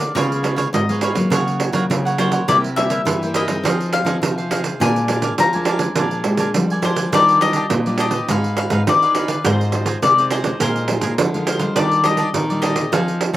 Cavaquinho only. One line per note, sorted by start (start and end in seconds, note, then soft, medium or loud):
0.00 0.15 A#4 soft
0.00 0.14 D5 soft
0.00 0.14 F5 soft
0.16 0.42 F4 medium
0.16 0.43 B4 medium
0.16 0.44 C#5 medium
0.16 0.44 F5 medium
0.43 0.55 F4 medium
0.43 0.55 B4 soft
0.43 0.56 C#5 soft
0.43 0.57 F5 medium
0.56 0.67 F4 medium
0.56 0.67 B4 medium
0.56 0.68 C#5 medium
0.56 0.68 F5 medium
0.89 1.01 B4 soft
0.89 1.02 C#5 soft
0.89 1.02 F5 soft
1.01 1.16 F4 medium
1.01 1.16 B4 medium
1.01 1.16 C#5 medium
1.01 1.14 F5 medium
1.15 1.31 B4 soft
1.15 1.31 C#5 soft
1.15 1.30 F5 medium
1.33 1.73 A#4 medium
1.33 1.73 C#5 medium
1.33 1.73 F#5 medium
1.73 1.84 F4 medium
1.73 1.84 A#4 medium
1.73 1.84 C#5 medium
1.73 1.84 F#5 medium
2.05 2.18 A#4 soft
2.05 2.19 C#5 soft
2.05 2.19 F#5 medium
2.19 2.33 F4 medium
2.19 2.33 A#4 medium
2.19 2.32 C#5 medium
2.19 2.30 F#5 medium
2.32 2.47 A#4 soft
2.32 2.47 C#5 soft
2.32 2.46 F#5 medium
2.49 2.76 E4 medium
2.49 2.77 A#4 medium
2.49 2.78 C5 medium
2.49 2.78 E5 medium
2.77 2.89 E4 soft
2.77 2.90 A#4 soft
2.77 2.90 C5 medium
2.77 2.91 E5 medium
2.90 3.00 E4 medium
2.90 3.01 A#4 medium
2.90 3.01 C5 medium
2.90 3.01 E5 medium
3.22 3.34 A#4 soft
3.22 3.35 C5 soft
3.22 3.35 E5 soft
3.35 3.49 E4 medium
3.35 3.49 A#4 medium
3.35 3.48 C5 medium
3.35 3.47 E5 medium
3.48 3.64 A#4 soft
3.48 3.63 C5 soft
3.48 3.63 E5 soft
3.65 4.05 D#4 medium
3.65 4.05 G#4 medium
3.65 4.06 C5 medium
3.65 4.06 F5 medium
4.06 4.16 D#4 medium
4.06 4.17 G#4 medium
4.06 4.17 C5 medium
4.06 4.17 F5 medium
4.38 4.51 G#4 soft
4.38 4.52 C5 soft
4.38 4.51 F5 soft
4.51 4.65 D#4 medium
4.51 4.65 G#4 medium
4.51 4.65 C5 medium
4.51 4.63 F5 medium
4.64 4.80 G#4 soft
4.64 4.80 C5 soft
4.64 4.79 F5 soft
4.81 5.07 D4 medium
4.81 5.08 A#4 medium
4.81 5.09 D5 medium
4.81 5.09 G#5 medium
5.09 5.21 D4 soft
5.09 5.22 A#4 medium
5.09 5.23 D5 medium
5.09 5.23 G#5 medium
5.23 5.33 D4 medium
5.23 5.33 A#4 medium
5.23 5.33 D5 medium
5.23 5.33 G#5 medium
5.54 5.67 A#4 soft
5.54 5.68 D5 soft
5.54 5.67 G#5 soft
5.67 5.81 D4 medium
5.67 5.81 A#4 medium
5.67 5.80 D5 medium
5.67 5.79 G#5 medium
5.81 5.96 A#4 soft
5.81 5.95 D5 soft
5.81 5.95 G#5 soft
5.97 6.37 D4 medium
5.97 6.38 A#4 medium
5.97 6.38 D5 medium
5.97 6.39 G#5 medium
6.38 6.49 D4 medium
6.38 6.49 A#4 medium
6.38 6.49 D5 medium
6.38 6.49 G#5 medium
6.71 6.83 A#4 soft
6.71 6.84 D5 soft
6.71 6.84 G#5 medium
6.83 6.97 D4 medium
6.83 6.98 A#4 medium
6.83 6.98 D5 medium
6.83 6.97 G#5 medium
6.98 7.13 A#4 soft
6.98 7.12 D5 soft
6.98 7.12 G#5 medium
7.14 7.40 D4 medium
7.14 7.42 G4 medium
7.14 7.42 D5 medium
7.14 7.42 D#5 medium
7.41 7.55 D4 medium
7.41 7.55 G4 medium
7.41 7.55 D5 medium
7.41 7.55 D#5 medium
7.56 7.65 D4 medium
7.56 7.65 G4 medium
7.56 7.66 D5 medium
7.56 7.66 D#5 medium
7.87 7.99 G4 soft
7.87 8.00 D5 soft
7.87 8.00 D#5 soft
7.99 8.13 D4 medium
7.99 8.13 G4 medium
7.99 8.12 D5 medium
7.99 8.12 D#5 medium
8.13 8.28 G4 soft
8.13 8.27 D5 soft
8.13 8.28 D#5 soft
8.29 8.71 D#4 medium
8.29 8.71 G#4 medium
8.29 8.71 B4 medium
8.29 8.72 F5 medium
8.72 8.81 D#4 medium
8.72 8.82 G#4 medium
8.72 8.82 B4 medium
8.72 8.82 F5 medium
9.03 9.15 G#4 soft
9.03 9.16 B4 soft
9.03 9.16 F5 soft
9.16 9.29 D#4 medium
9.16 9.30 G#4 medium
9.16 9.29 B4 medium
9.16 9.28 F5 medium
9.29 9.44 G#4 soft
9.29 9.44 B4 soft
9.29 9.43 F5 medium
9.45 9.73 F4 medium
9.45 9.73 G#4 medium
9.45 9.74 C5 medium
9.45 9.74 D#5 medium
9.74 9.85 F4 soft
9.74 9.86 G#4 medium
9.74 9.86 C5 medium
9.74 9.87 D#5 medium
9.86 9.97 F4 medium
9.86 9.97 G#4 medium
9.86 9.97 C5 medium
9.86 9.97 D#5 medium
10.18 10.30 G#4 soft
10.18 10.31 C5 soft
10.18 10.31 D#5 soft
10.31 10.45 F4 medium
10.31 10.45 G#4 medium
10.31 10.44 C5 medium
10.31 10.43 D#5 medium
10.44 10.60 G#4 soft
10.44 10.59 C5 soft
10.44 10.59 D#5 medium
10.62 11.02 G#4 medium
10.62 11.02 A#4 medium
10.62 11.03 D#5 medium
10.62 11.03 F5 medium
11.03 11.13 G#4 medium
11.03 11.13 A#4 medium
11.03 11.13 D#5 medium
11.03 11.13 F5 medium
11.35 11.46 A#4 soft
11.35 11.47 D#5 soft
11.35 11.48 F5 soft
11.47 11.61 G#4 medium
11.47 11.61 A#4 medium
11.47 11.60 D#5 medium
11.47 11.59 F5 medium
11.60 11.76 A#4 soft
11.60 11.75 D#5 soft
11.60 11.75 F5 soft
11.77 12.03 D4 medium
11.77 12.04 G4 medium
11.77 12.06 D5 medium
11.77 12.05 D#5 medium
12.05 12.17 D4 medium
12.05 12.17 G4 medium
12.05 12.18 D5 medium
12.05 12.18 D#5 medium
12.18 12.28 D4 medium
12.18 12.29 G4 medium
12.18 12.29 D5 medium
12.18 12.29 D#5 medium
12.50 12.63 G4 soft
12.50 12.63 D5 soft
12.50 12.63 D#5 soft
12.63 12.77 D4 medium
12.63 12.76 G4 medium
12.63 12.74 D5 medium
12.63 12.75 D#5 medium
12.75 12.91 G4 soft
12.75 12.90 D5 soft
12.75 12.91 D#5 soft
12.93 13.32 D#4 medium
12.93 13.33 G#4 medium
12.93 13.33 C5 medium
12.93 13.34 F5 medium
13.34 13.37 D#4 medium